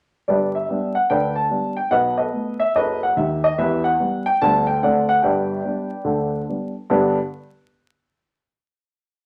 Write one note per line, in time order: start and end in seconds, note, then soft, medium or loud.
0.28 0.63 G1 medium
0.28 0.63 G2 medium
0.28 0.54 G4 medium
0.28 0.54 B4 soft
0.28 0.51 D5 medium
0.55 0.90 E5 medium
0.69 0.92 G3 soft
0.69 0.92 B3 soft
0.69 0.93 D4 soft
0.95 1.08 F#5 medium
1.10 1.45 D2 soft
1.10 1.46 D3 medium
1.10 1.35 B4 medium
1.10 1.36 D5 medium
1.10 1.33 G5 medium
1.36 1.72 A5 medium
1.50 1.74 G3 soft
1.50 1.74 B3 soft
1.50 1.74 D4 soft
1.77 1.90 G5 medium
1.91 2.27 B1 medium
1.91 2.27 B2 medium
1.91 2.17 B4 medium
1.91 2.16 D#5 medium
1.91 2.15 F#5 medium
2.17 2.58 A4 soft
2.17 2.58 B4 soft
2.17 2.54 D#5 medium
2.33 2.56 A3 soft
2.33 2.56 B3 soft
2.60 2.73 E5 medium
2.75 3.11 F#1 medium
2.75 3.11 F#2 medium
2.75 3.01 A4 medium
2.75 3.02 B4 medium
2.75 2.99 D#5 medium
3.03 3.16 F#5 medium
3.16 3.50 D#2 medium
3.16 3.50 D#3 medium
3.16 3.40 E5 medium
3.44 3.57 D#5 medium
3.58 3.94 E2 medium
3.58 3.94 E3 medium
3.58 3.84 G4 medium
3.58 3.84 B4 medium
3.58 3.81 E5 medium
3.84 4.20 F#5 medium
4.00 4.23 G3 soft
4.00 4.23 B3 soft
4.26 4.39 G5 medium
4.41 4.77 D2 medium
4.41 4.77 D3 medium
4.41 4.65 G3 soft
4.41 4.65 B3 soft
4.41 4.65 D4 soft
4.41 4.64 A5 loud
4.67 4.80 G5 medium
4.82 5.18 D2 medium
4.82 5.18 D3 medium
4.82 5.06 A3 soft
4.82 5.06 C4 soft
4.82 5.07 D4 soft
4.82 5.08 C5 soft
4.82 5.08 D5 medium
4.82 5.06 F#5 medium
5.09 5.22 F#5 medium
5.22 5.58 G1 medium
5.22 5.59 G2 medium
5.22 6.44 B4 medium
5.22 6.44 D5 medium
5.22 6.28 G5 medium
5.65 5.88 G3 soft
5.65 5.88 B3 soft
5.65 5.88 D4 soft
6.04 6.40 D2 medium
6.04 6.41 D3 medium
6.48 6.71 G3 soft
6.48 6.71 B3 soft
6.48 6.72 D4 soft
6.90 7.17 G2 medium
6.90 7.17 D3 medium
6.90 7.17 B3 medium
6.90 7.17 D4 medium
6.90 7.17 G4 medium
6.90 7.18 B4 medium